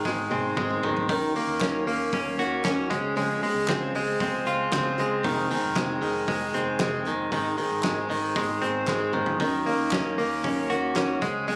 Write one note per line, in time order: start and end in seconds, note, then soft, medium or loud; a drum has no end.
0.00 0.83 D#3 medium
0.00 0.31 C4 medium
0.05 0.26 G#1 loud
0.05 0.31 G#3 medium
0.05 0.31 C4 medium
0.05 0.30 D#4 medium
0.05 0.29 G#4 medium
0.05 kick loud
0.05 snare medium
0.30 0.52 G#1 medium
0.30 0.56 G#3 soft
0.30 0.57 C4 soft
0.30 0.57 D#4 medium
0.30 0.57 G#4 medium
0.30 high tom medium
0.57 0.78 G#1 loud
0.57 0.83 G#2 medium
0.57 0.83 D#3 medium
0.57 0.83 G#3 medium
0.57 0.83 C4 medium
0.57 0.83 D#4 medium
0.57 0.82 G#4 medium
0.57 kick loud
0.57 mid tom medium
0.70 mid tom medium
0.83 1.11 G#1 loud
0.83 1.08 D#3 medium
0.83 1.09 G#3 soft
0.83 1.09 C4 medium
0.83 1.09 D#4 medium
0.83 1.09 G#4 medium
0.83 floor tom loud
0.96 floor tom loud
1.09 1.31 D#2 loud
1.09 1.35 D#3 medium
1.09 1.35 F#3 medium
1.09 1.35 C#4 medium
1.09 1.35 D#4 medium
1.09 1.34 A#4 loud
1.09 kick loud
1.09 hi-hat pedal medium
1.09 open hi-hat medium
1.35 1.86 A#3 medium
1.35 1.60 C#4 soft
1.35 1.60 D#4 soft
1.35 1.60 A#4 medium
1.35 hi-hat pedal medium
1.35 open hi-hat medium
1.47 1.58 D#2 medium
1.60 1.82 D#2 medium
1.60 1.87 D#3 medium
1.60 1.87 F#3 medium
1.60 1.87 C#4 medium
1.60 1.86 D#4 loud
1.60 1.85 A#4 medium
1.60 kick loud
1.60 snare loud
1.60 clap medium
1.60 hi-hat pedal medium
1.60 open hi-hat medium
1.86 2.08 D#2 loud
1.86 2.90 A#3 medium
1.86 2.12 C#4 soft
1.86 2.12 D#4 medium
1.86 2.12 A#4 medium
1.86 hi-hat pedal medium
1.86 open hi-hat medium
2.12 2.34 D#2 loud
2.12 2.38 F#3 medium
2.12 2.39 C#4 medium
2.12 2.38 D#4 medium
2.12 2.36 A#4 medium
2.12 kick loud
2.12 hi-hat pedal medium
2.12 open hi-hat medium
2.38 2.60 D#2 loud
2.38 2.65 C#4 soft
2.38 2.65 D#4 soft
2.38 2.96 F#4 medium
2.38 2.64 A#4 medium
2.38 hi-hat pedal medium
2.38 open hi-hat medium
2.64 2.86 D#2 medium
2.64 2.91 D#3 medium
2.64 2.91 F#3 medium
2.64 2.91 C#4 medium
2.64 2.91 D#4 medium
2.64 2.90 A#4 medium
2.64 kick loud
2.64 snare loud
2.64 clap medium
2.64 hi-hat pedal medium
2.64 open hi-hat medium
2.90 3.33 C#2 loud
2.90 3.15 G#3 medium
2.90 3.15 C4 medium
2.90 3.16 G#4 medium
2.90 kick loud
2.90 hi-hat pedal medium
2.90 open hi-hat medium
3.15 3.42 C#3 loud
3.15 3.42 F3 loud
3.15 3.43 G#3 medium
3.15 3.42 C4 loud
3.15 3.41 G#4 loud
3.15 hi-hat pedal medium
3.15 open hi-hat medium
3.42 3.67 G#3 medium
3.42 3.67 C4 medium
3.42 3.68 G#4 medium
3.42 hi-hat pedal medium
3.42 open hi-hat medium
3.54 3.65 C#2 loud
3.68 3.90 C#2 loud
3.68 3.94 C#3 loud
3.68 3.94 F3 medium
3.68 3.94 G#3 medium
3.68 3.95 C4 loud
3.68 3.94 G#4 loud
3.68 kick loud
3.68 snare loud
3.68 clap medium
3.68 hi-hat pedal medium
3.68 open hi-hat medium
3.94 4.15 C#2 loud
3.94 4.20 G#3 soft
3.94 4.21 C4 soft
3.94 4.21 G#4 medium
3.94 hi-hat pedal medium
3.94 open hi-hat medium
4.20 4.42 C#2 loud
4.20 4.47 F3 medium
4.20 4.47 G#3 medium
4.20 4.47 C4 medium
4.20 4.45 G#4 medium
4.20 kick loud
4.20 hi-hat pedal medium
4.20 open hi-hat medium
4.45 4.67 C#2 medium
4.45 4.73 G#3 soft
4.45 4.73 C4 medium
4.45 5.54 F4 medium
4.45 4.73 G#4 soft
4.45 hi-hat pedal medium
4.45 open hi-hat medium
4.72 4.94 C#2 medium
4.72 4.99 C#3 medium
4.72 4.99 F3 medium
4.72 4.99 G#3 medium
4.72 4.98 C4 loud
4.72 4.97 G#4 loud
4.72 kick loud
4.72 snare loud
4.72 clap medium
4.72 hi-hat pedal medium
4.72 open hi-hat medium
4.97 5.26 C#2 loud
4.97 5.23 G#3 soft
4.97 5.24 C4 medium
4.97 5.24 G#4 medium
4.97 hi-hat pedal medium
4.97 open hi-hat medium
5.24 5.46 F1 loud
5.24 5.50 F2 medium
5.24 5.50 C3 loud
5.24 5.50 D#3 loud
5.24 5.50 G#3 medium
5.24 5.49 C4 loud
5.24 5.49 G#4 loud
5.24 kick loud
5.24 hi-hat pedal medium
5.24 open hi-hat medium
5.50 5.75 D#3 soft
5.50 5.76 G#3 medium
5.50 5.76 C4 soft
5.50 5.76 G#4 medium
5.50 hi-hat pedal medium
5.50 open hi-hat medium
5.63 5.74 F1 medium
5.75 5.97 F1 loud
5.75 6.02 F2 medium
5.75 6.02 C3 medium
5.75 6.02 D#3 medium
5.75 6.02 G#3 loud
5.75 6.01 C4 medium
5.75 6.00 G#4 loud
5.75 kick loud
5.75 snare loud
5.75 clap medium
5.75 hi-hat pedal medium
5.75 open hi-hat medium
6.02 6.24 F1 loud
6.02 6.26 D#3 soft
6.02 6.27 G#3 soft
6.02 6.28 C4 soft
6.02 6.28 G#4 medium
6.02 hi-hat pedal medium
6.02 open hi-hat medium
6.27 6.49 F1 loud
6.27 6.54 D#3 medium
6.27 6.54 G#3 medium
6.27 6.53 C4 medium
6.27 6.52 G#4 medium
6.27 kick loud
6.27 hi-hat pedal medium
6.27 open hi-hat medium
6.53 6.76 F1 medium
6.53 6.80 D#3 soft
6.53 6.80 G#3 soft
6.53 6.80 C4 medium
6.53 6.80 G#4 medium
6.53 hi-hat pedal medium
6.53 open hi-hat medium
6.79 7.02 F1 medium
6.79 7.06 F2 medium
6.79 7.06 C3 medium
6.79 7.06 D#3 medium
6.79 7.06 G#3 loud
6.79 7.05 C4 loud
6.79 7.05 G#4 medium
6.79 kick loud
6.79 snare loud
6.79 clap medium
6.79 hi-hat pedal medium
6.79 open hi-hat medium
7.05 7.27 F1 loud
7.05 7.30 D#3 soft
7.05 7.31 G#3 soft
7.05 7.31 C4 medium
7.05 7.31 G#4 medium
7.05 hi-hat pedal medium
7.05 open hi-hat medium
7.31 7.54 G#1 loud
7.31 7.58 G#2 medium
7.31 7.58 D#3 medium
7.31 7.58 G#3 loud
7.31 7.58 C4 loud
7.31 7.57 D#4 loud
7.31 7.56 G#4 medium
7.31 kick loud
7.31 hi-hat pedal medium
7.31 open hi-hat medium
7.57 8.09 D#3 medium
7.57 7.83 G#3 soft
7.57 7.83 C4 medium
7.57 7.83 D#4 medium
7.57 7.84 G#4 medium
7.57 hi-hat pedal medium
7.57 open hi-hat medium
7.71 7.82 G#1 medium
7.83 8.05 G#1 medium
7.83 8.10 G#2 medium
7.83 8.10 D#3 loud
7.83 8.10 G#3 medium
7.83 8.10 C4 loud
7.83 8.09 D#4 loud
7.83 8.08 G#4 loud
7.83 kick loud
7.83 snare loud
7.83 clap medium
7.83 hi-hat pedal medium
7.83 open hi-hat medium
8.09 8.32 G#1 loud
8.09 9.13 D#3 medium
8.09 8.35 G#3 soft
8.09 8.36 C4 soft
8.09 8.36 D#4 medium
8.09 8.36 G#4 medium
8.09 hi-hat pedal medium
8.09 open hi-hat medium
8.35 8.57 G#1 loud
8.35 8.62 G#3 medium
8.35 8.62 C4 medium
8.35 8.62 D#4 medium
8.35 8.60 G#4 medium
8.35 kick loud
8.35 hi-hat pedal medium
8.35 open hi-hat medium
8.62 8.83 G#1 medium
8.62 8.87 G#3 soft
8.62 8.87 C4 soft
8.62 8.88 D#4 medium
8.62 8.88 G#4 soft
8.62 hi-hat pedal medium
8.62 open hi-hat medium
8.87 9.09 G#1 medium
8.87 9.13 G#2 medium
8.87 9.14 D#3 medium
8.87 9.14 G#3 medium
8.87 9.14 C4 medium
8.87 9.14 D#4 medium
8.87 9.13 G#4 loud
8.87 kick loud
8.87 snare medium
8.87 clap medium
9.13 9.41 G#1 loud
9.13 9.39 D#3 medium
9.13 9.40 G#3 medium
9.13 9.41 C4 medium
9.13 9.40 D#4 medium
9.13 9.40 G#4 medium
9.13 mid tom medium
9.26 floor tom loud
9.40 9.61 D#2 loud
9.40 9.66 D#3 medium
9.40 9.66 F#3 medium
9.40 9.67 C#4 medium
9.40 9.66 D#4 medium
9.40 9.65 A#4 medium
9.40 kick loud
9.40 hi-hat pedal medium
9.40 open hi-hat medium
9.66 10.17 A#3 medium
9.66 9.92 C#4 soft
9.66 9.92 D#4 medium
9.66 9.92 A#4 medium
9.66 hi-hat pedal medium
9.66 open hi-hat medium
9.79 9.89 D#2 medium
9.91 10.14 D#2 loud
9.91 10.18 D#3 medium
9.91 10.18 F#3 medium
9.91 10.18 C#4 medium
9.91 10.18 D#4 medium
9.91 10.17 A#4 loud
9.91 kick loud
9.91 snare loud
9.91 clap medium
9.91 hi-hat pedal medium
9.91 open hi-hat medium
10.18 10.39 D#2 loud
10.18 11.22 A#3 medium
10.18 10.43 C#4 soft
10.18 10.44 D#4 medium
10.18 10.44 A#4 medium
10.18 hi-hat pedal medium
10.18 open hi-hat medium
10.43 10.66 D#2 loud
10.43 10.70 F#3 medium
10.43 10.70 C#4 medium
10.43 10.70 D#4 medium
10.43 10.69 A#4 medium
10.43 kick loud
10.43 hi-hat pedal medium
10.43 open hi-hat medium
10.70 10.91 D#2 loud
10.70 10.95 C#4 soft
10.70 10.95 D#4 soft
10.70 11.27 F#4 medium
10.70 10.95 A#4 soft
10.70 hi-hat pedal medium
10.70 open hi-hat medium
10.95 11.17 D#2 medium
10.95 11.21 D#3 medium
10.95 11.21 F#3 medium
10.95 11.22 C#4 medium
10.95 11.22 D#4 medium
10.95 11.21 A#4 loud
10.95 kick loud
10.95 snare loud
10.95 clap medium
10.95 hi-hat pedal medium
10.95 open hi-hat medium
11.21 11.56 C#2 loud
11.21 11.47 G#3 soft
11.21 11.47 C4 soft
11.21 11.48 G#4 medium
11.21 kick loud
11.21 hi-hat pedal medium
11.21 open hi-hat medium
11.48 11.56 C#3 medium
11.48 11.56 F3 loud
11.48 11.56 G#3 loud
11.48 11.56 C4 loud
11.48 11.56 G#4 loud
11.48 hi-hat pedal medium
11.48 open hi-hat medium